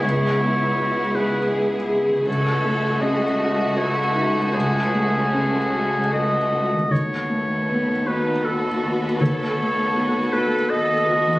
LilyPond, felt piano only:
\new Staff \with { instrumentName = "Felt piano" } { \time 3/4 \key fis \dorian \tempo 4 = 80 <cis, gis'>8 b8 e'8 gis'8 b'8 gis'8 | cis,8 a8 cis'8 fis'8 a'8 fis'8 | cis,8 a8 cis'8 fis'8 a'8 fis'8 | dis,8 a8 b8 fis'8 a'8 fis'8 |
dis,8 a8 b8 fis'8 a'8 fis'8 | }